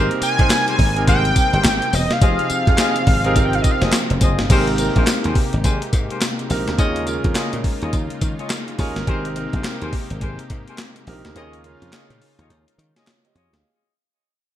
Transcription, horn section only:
Already playing: G4 G#4 A#4 C5
0.39 G4 G#4 A#4 C5
0.67 G4 G#4 A#4 C5
1.07 G4 G#4 A#4 C5
1.53 G4 G#4 A#4 C5
2.21 F4 G#4 C5 D#5
2.78 F4 G#4 C5 D#5
3.25 F4 G#4 C5 D#5
3.82 F4 G#4 C5 D#5
4.21 F4 G#4 C5 D#5
4.50 G4 G#4 A#4 C5
4.96 G4 G#4 A#4 C5
5.25 G4 G#4 A#4 C5
5.64 G4 G#4 A#4 C5
6.10 G4 G#4 A#4 C5
6.78 F4 G#4 C#5 D#5
7.36 F4 G#4 C#5 D#5
7.81 F4 G#4 C#5 D#5
8.39 F4 G#4 C#5 D#5
8.79 F4 G#4 C#5 D#5
9.07 G4 G#4 A#4 C5
9.53 G4 G#4 A#4 C5
9.82 G4 G#4 A#4 C5
10.22 G4 G#4 A#4 C5
10.68 G4 G#4 A#4 C5
11.36 F4 G#4 C#5 D#5
11.93 F4 G#4 C#5 D#5
12.39 F4 G#4 C#5 D#5
12.96 F4 G#4 C#5 D#5
13.35 F4 G#4 C#5 D#5

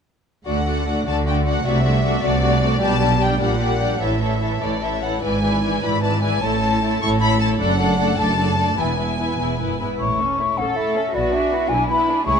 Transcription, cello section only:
0.46 D3
1.06 D3
1.65 C3
2.23 C3
2.81 B2
3.40 A#2
4.00 A2
4.62 A2
5.23 G#2
5.83 G#2
6.43 A2
7.01 A2
7.59 F#2
8.18 F#2
8.78 E2
9.39 E2
9.60 F#2
9.81 G#2
10.58 A4
11.15 F#4
11.71 E4
12.27 G#4

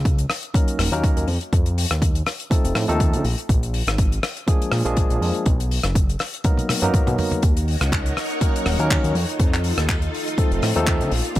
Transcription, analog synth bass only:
Already playing: C#2
0.79 D#1
0.92 D#2
1.17 D#2
1.28 F2
1.53 F2
1.91 D#2
2.64 F1
2.75 A2
2.89 D#2
3.14 D3
3.25 A#1
3.49 A#1
3.87 G#1
4.72 A#2
4.85 A#1
5.10 A#1
5.21 F2
5.46 B1
5.84 F#1
6.82 F#2
7.07 B2
7.43 D#2
7.81 C#2
8.66 D#1
8.79 D#2
9.04 D#2
9.15 F2
9.39 F2
9.78 D#2
10.51 F1
10.63 A2
10.76 D#2
11.00 D3
11.11 A#1
11.36 A#1

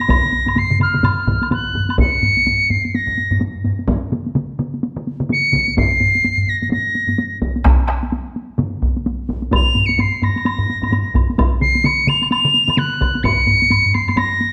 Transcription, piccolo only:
Already playing: A#6
0.58 C7
0.82 F6
1.53 F#6
2.00 C#7
2.70 C7
2.95 A#6
5.32 C#7
5.78 C7
6.49 A#6
6.72 A#6
9.55 F7
9.86 C#7
10.01 C7
10.24 A#6
11.61 C7
11.85 C#7
12.08 F7
12.31 F7
12.78 F#6
13.23 C#7
13.94 C7
14.18 A#6

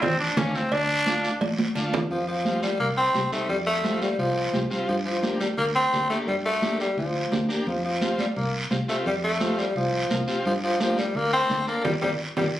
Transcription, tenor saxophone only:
2.11 F3
2.27 F3
2.62 G3
2.80 A#3
2.97 C4
3.32 A3
3.49 G3
3.67 A3
4.02 G3
4.19 F3
4.88 F3
5.05 F3
5.40 G3
5.58 A#3
5.75 C4
6.10 A3
6.28 G3
6.46 A3
6.80 G3
6.98 F3
7.67 F3
7.85 F3
8.20 G3
8.37 A#3
8.89 A3
9.07 G3
9.24 A3
9.59 G3
9.76 F3
10.46 F3
10.64 F3
10.81 F3
10.99 G3
11.16 A#3
11.33 C4
11.68 A#3
11.84 G3
12.02 G3
12.37 G3

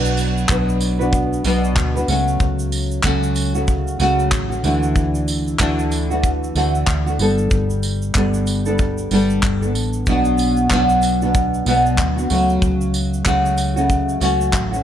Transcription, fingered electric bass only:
Already playing: B1
0.49 B1
1.44 B1
1.76 D2
2.08 C#2
2.40 C#2
3.04 C#2
4.00 C#2
4.32 A1
4.64 D2
5.59 D2
6.55 D2
6.87 D2
7.19 G1
7.51 G1
8.15 G1
9.11 G1
9.43 G1
9.75 A1
10.07 B1
10.71 B1
11.66 B1
11.98 D2
12.30 C#2
12.62 C#2
13.26 C#2
14.21 C#2
14.53 A1

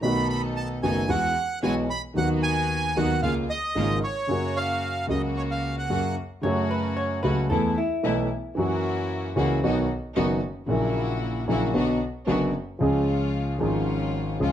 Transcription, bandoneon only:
0.03 B5
0.30 B5
0.56 A5
0.83 G#5
1.10 F#5
1.63 G#5
1.90 B5
2.17 F#5
2.43 G#5
2.96 F#5
3.22 F5
3.50 D#5
4.03 C#5
4.57 F5
5.10 D#5
5.37 C#5
5.51 F5
5.78 F#5

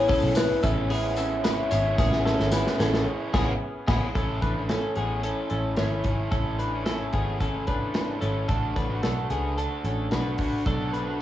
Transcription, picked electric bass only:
Already playing: A1
0.23 B1
0.64 A1
1.72 G#1
1.98 A1
2.40 G#1
2.80 A1
3.34 A1
3.88 A1
4.15 A1
4.42 A1
4.97 A1
5.51 A1
5.78 G#1
6.05 G#1
6.32 A1
7.14 G#1
8.22 G#1
8.49 A1
8.76 A1
9.04 B1
9.30 C#2
9.84 A1
10.12 B1
10.39 A1
10.66 B1

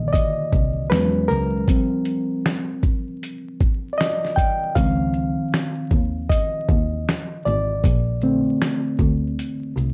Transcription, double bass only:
0.53 C2
0.91 E2
1.30 C#2
4.76 C#2
5.91 D#2
6.69 D#2
7.46 G#1
7.84 A#1
8.99 D2
9.76 C2

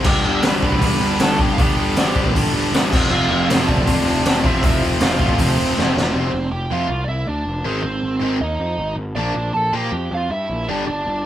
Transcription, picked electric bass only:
0.06 G1
0.25 G1
0.44 G1
0.82 G1
1.00 G1
1.18 G1
1.39 G1
1.59 G1
1.97 G1
2.16 G1
2.35 G1
2.53 G1
2.72 G1
2.93 F1
3.09 F1
3.29 F1
3.49 F1
3.87 F1
4.04 F1
4.24 F1
4.44 F1
4.63 F1
4.99 F1
5.19 F1
5.38 F1
5.57 F1
5.77 F1
5.95 F1
6.14 F1
6.32 F1
6.51 F1
6.71 F2
6.89 C2
7.07 C2
7.26 D2
7.45 F1
7.65 G#1
7.84 G#1
8.04 G#1
8.22 G#1
8.41 D#2
8.60 F2
8.78 G#1
8.96 G#1
9.15 A#1
9.35 A#1
9.54 A#1
9.73 A#2
9.92 F2
10.11 F2
10.30 G2
10.50 A#1
10.69 G1
10.88 G1
11.06 G1

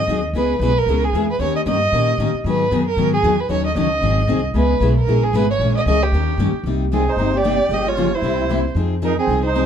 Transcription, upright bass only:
0.08 D#2
0.33 C#2
0.59 B1
0.86 C#2
1.13 E2
1.39 D#2
1.66 G2
1.92 A#2
2.18 A2
2.33 muted upright bass stroke
2.44 G#2
2.71 F#2
2.96 G#2
3.23 E2
3.49 D#2
3.75 C#2
4.01 G#1
4.27 C2
4.54 C#2
4.80 B1
5.06 A#1
5.33 G#1
5.59 A#1
5.86 C#2
6.12 D#2
6.38 G2
6.53 muted upright bass stroke
6.64 C2
7.16 G1
7.69 G1
8.22 C2
8.75 F2
9.27 C2

